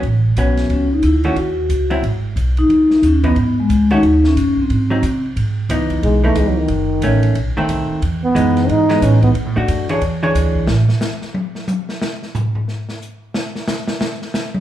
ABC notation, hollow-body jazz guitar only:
X:1
M:4/4
L:1/8
Q:"Swing" 1/4=180
K:C#m
V:1 name="Hollow-body jazz guitar"
z2 [F,B,C]3 z2 [D,A,CF] | z3 [F,^B,E] z4 | z3 [E,B,D] z3 [D,A,CF] | z4 z [F,^B,D] z2 |
z2 [E,B,D]3 [E,B,D]3 | z2 [A,C]2 z [D,A,=C]3 | z2 [E,G,B,D]3 [E,G,B,D]3 | z [A,=DF]2 [E,DGc] z [E,DGc]3 |
z8 | z8 | z8 |]